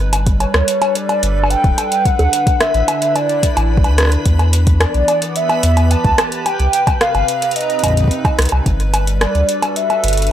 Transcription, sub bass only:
0.00 0.45 G1 loud
0.54 0.62 D2 medium
1.23 1.55 G1 loud
1.64 1.72 D1 loud
2.19 2.28 D2 loud
2.74 2.83 A1 medium
3.57 3.86 A1 loud
3.84 4.17 D2 loud
4.26 4.86 E2 medium
4.95 5.03 B1 medium
5.63 5.96 E2 loud
6.05 6.13 D2 loud
6.60 6.68 C2 loud
7.15 7.23 G1 medium
8.39 8.47 C2 loud
8.52 8.61 C2 loud
8.66 9.26 G1 loud
9.35 9.43 D2 medium
10.04 10.32 G1 loud

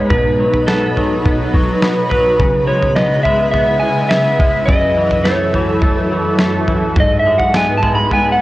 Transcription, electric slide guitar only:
0.10 0.67 B4 medium
0.67 2.10 A4 medium
2.10 2.64 B4 medium
2.67 2.97 C#5 medium
2.96 3.23 D#5 medium
3.23 3.50 E5 medium
3.51 3.79 E5 medium
3.80 4.11 G#5 loud
4.09 4.63 E5 medium
4.66 5.26 D#5 medium
5.24 6.64 C#5 medium
7.00 7.18 D#5 medium
7.19 7.37 E5 medium
7.38 7.56 F#5 medium
7.56 7.75 G#5 medium
7.77 7.95 A5 medium
7.95 8.13 B5 medium
8.13 8.32 G#5 medium
8.32 8.41 F#5 medium

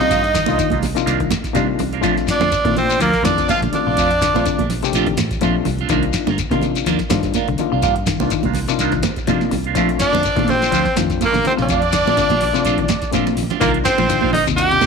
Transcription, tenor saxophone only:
0.00 0.81 D#4 loud
2.31 2.74 D4 medium
2.78 2.99 C4 medium
3.02 3.26 A#3 loud
3.25 3.49 D4 medium
3.50 3.61 F4 loud
3.75 4.66 D4 loud
10.02 10.51 D4 loud
10.50 10.97 C4 loud
11.25 11.46 A#3 medium
11.47 11.53 C4 medium
11.62 13.12 D4 loud
13.60 13.72 A#3 medium
13.85 14.31 C4 loud
14.33 14.44 D#4 loud
14.57 14.86 G4 loud

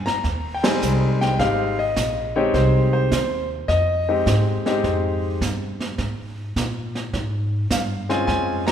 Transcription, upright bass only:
0.07 muted upright bass stroke soft
0.24 0.80 D#2 medium
0.83 1.38 C2 medium
1.39 1.95 G#1 medium
1.96 2.52 A#1 medium
2.54 3.10 C2 medium
3.11 3.67 D#2 medium
3.68 4.25 F2 medium
4.26 4.82 G#2 medium
4.84 5.40 F2 medium
5.41 5.97 G2 medium
5.98 6.54 G#2 medium
6.56 7.12 A#2 medium
7.14 7.69 G#2 medium
7.70 8.26 G2 medium
8.28 8.72 F2 medium

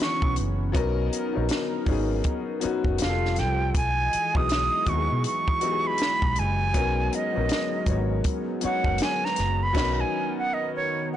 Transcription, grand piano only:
0.00 0.76 D#3 medium
0.00 0.77 E3 medium
0.00 0.73 B3 medium
0.00 0.74 C#4 medium
0.00 0.76 D#4 medium
0.00 0.65 F#4 medium
0.00 0.77 G#4 medium
0.72 1.25 F#3 loud
0.72 1.26 B3 loud
0.72 1.26 C#4 loud
0.72 1.27 D#4 medium
0.77 1.27 A#4 loud
1.33 1.81 F#3 medium
1.33 1.81 B3 medium
1.33 1.82 C#4 medium
1.33 1.82 D#4 medium
1.37 1.83 A#4 medium
1.86 2.54 F#3 medium
1.86 2.55 B3 medium
1.86 2.55 C#4 medium
1.86 2.56 D#4 medium
1.90 2.56 G#4 medium
2.60 2.99 F#3 medium
2.60 2.99 B3 medium
2.60 3.00 C#4 medium
2.60 3.00 D#4 medium
2.65 3.01 F#4 medium
2.98 3.67 G3 medium
2.98 3.67 C4 medium
2.98 3.68 F4 medium
2.98 3.68 G4 medium
3.02 3.09 G#4 medium
3.09 3.72 A4 medium
4.33 4.81 F#3 medium
4.33 4.81 B3 medium
4.33 4.82 D#4 medium
4.33 4.83 E4 medium
4.38 4.83 G#4 medium
4.86 5.54 F#3 medium
4.86 5.55 B3 medium
4.86 5.55 D#4 medium
4.86 5.56 E4 medium
4.90 4.97 F#4 medium
4.97 5.59 G#4 medium
5.60 6.63 F#3 medium
5.60 6.63 B3 medium
5.60 6.64 D#4 medium
5.60 6.64 E4 medium
5.65 5.71 G4 medium
5.71 6.68 G#4 medium
6.73 7.25 F#3 loud
6.73 7.26 B3 loud
6.73 7.27 C#4 medium
6.73 7.27 D#4 medium
6.77 7.28 A#4 loud
7.33 7.81 F#3 medium
7.33 7.81 B3 medium
7.33 7.82 C#4 medium
7.33 7.82 D#4 medium
7.37 7.83 A#4 medium
7.86 8.54 F#3 medium
7.86 8.54 B3 medium
7.86 8.55 C#4 medium
7.86 8.56 D#4 medium
7.90 8.56 C#5 medium
8.60 9.71 F#3 medium
8.60 9.73 B3 medium
8.60 9.74 C#4 medium
8.60 9.75 D#4 medium
8.65 9.76 C#5 medium
9.73 10.01 F#3 loud
9.73 10.01 B3 loud
9.73 10.02 C#4 loud
9.73 10.03 D#4 loud
9.77 10.03 A#4 medium

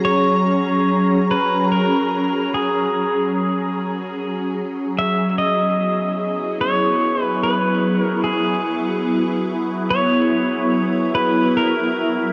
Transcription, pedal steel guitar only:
0.05 1.31 C#5 loud
1.31 1.71 B4 medium
1.72 2.55 A#4 medium
2.54 4.54 G#4 medium
4.99 5.38 E5 loud
5.38 6.61 D#5 loud
6.61 7.23 C#5 medium
7.23 7.43 B4 medium
7.43 8.01 B4 medium
8.01 8.29 A#4 medium
8.24 9.45 G#4 medium
9.90 11.14 C#5 loud
11.15 11.56 B4 medium
11.57 12.33 A#4 loud

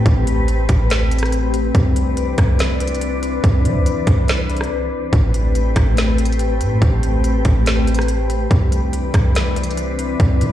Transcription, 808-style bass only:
0.06 0.67 A1 loud
0.69 1.71 A1 loud
1.75 2.36 C2 loud
2.38 3.40 C2 loud
3.44 3.66 C2 loud
3.65 3.77 G3 loud
3.76 3.86 C2 loud
4.07 4.68 C2 loud
5.13 5.74 A1 loud
5.76 6.62 A1 loud
6.61 6.81 A2 loud
6.82 7.43 A1 loud
7.45 8.47 A1 loud
8.51 9.12 C2 loud
9.14 10.16 C2 loud
10.20 10.43 C2 loud
10.41 10.52 G3 loud

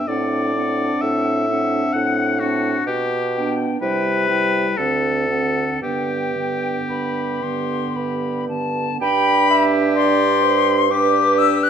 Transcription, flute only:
0.09 0.55 F#5 soft
0.57 1.47 F#5 soft
1.49 2.39 F#5 soft
2.40 2.86 F#5 soft
3.34 3.80 G5 soft
3.81 4.28 G5 soft
4.29 4.77 G5 soft
4.78 5.28 F#5 soft
5.29 5.81 F#5 soft
5.82 6.36 G5 soft
6.37 6.79 G5 soft
6.89 7.44 B5 soft
7.43 7.97 C6 soft
7.96 8.48 B5 soft
8.48 8.97 A5 medium
9.01 9.64 B5 loud
9.96 10.92 C6 medium
10.91 11.39 D6 medium
11.38 11.65 E6 medium
11.63 11.70 F#6 medium

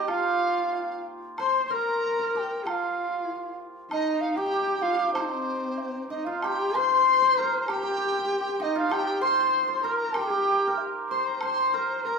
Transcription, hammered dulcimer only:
0.00 1.60 A#3 medium
0.00 1.62 C4 medium
0.00 2.44 D#4 medium
0.00 2.35 G4 medium
0.08 2.65 F4 medium
1.39 4.03 C5 medium
1.70 2.19 A#4 medium
2.19 5.02 A#4 medium
2.35 4.37 G4 medium
2.66 6.02 F4 medium
3.92 5.08 D#4 medium
4.37 4.46 G4 medium
4.46 4.53 G4 medium
4.54 4.61 G4 medium
4.61 4.66 G4 soft
4.67 4.75 G4 medium
4.75 4.81 G4 soft
4.81 4.88 G4 medium
4.89 4.95 G4 soft
4.96 5.02 G4 medium
5.03 6.43 G4 medium
5.08 6.10 D#4 soft
5.15 9.15 C4 medium
6.10 8.59 D#4 medium
6.26 8.75 F4 medium
6.44 7.69 G4 medium
6.75 7.21 C5 medium
7.22 9.21 C5 medium
7.38 9.84 A#4 medium
7.70 7.76 G4 medium
7.76 7.83 G4 medium
7.83 7.90 G4 medium
7.90 7.98 G4 medium
7.98 8.05 G4 medium
8.05 8.11 G4 medium
8.12 8.18 G4 medium
8.19 8.25 G4 medium
8.26 8.32 G4 medium
8.32 8.40 G4 medium
8.41 8.49 G4 medium
8.49 8.89 G4 medium
8.60 12.19 D#4 medium
8.76 12.12 F4 medium
8.89 10.14 G4 medium
9.21 9.67 C5 medium
9.68 11.11 C5 medium
9.84 10.67 A#4 medium
10.15 10.20 G4 medium
10.21 10.29 G4 medium
10.30 10.37 G4 medium
10.38 10.45 G4 medium
10.45 10.51 G4 medium
10.51 12.19 G4 medium
10.67 11.73 A#4 medium
11.11 11.42 C5 medium
11.43 12.19 C5 medium
11.74 12.06 A#4 medium
12.06 12.19 A#4 medium

